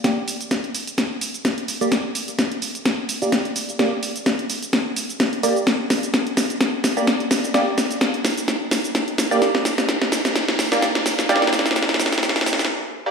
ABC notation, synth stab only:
X:1
M:4/4
L:1/16
Q:"Swing 16ths" 1/4=128
K:Gm
V:1 name="Synth stab"
[B,Gd] z12 z2 [B,Gd] | z8 z3 [B,Gd] z4 | [B,Gd] z12 z [B,Gd] z | z8 z3 [B,Gd] z4 |
[B,Gd] z12 z2 [B,Gd] | z8 z3 [B,Gd] z4 | [B,Gd] z12 z2 [B,Gd] |]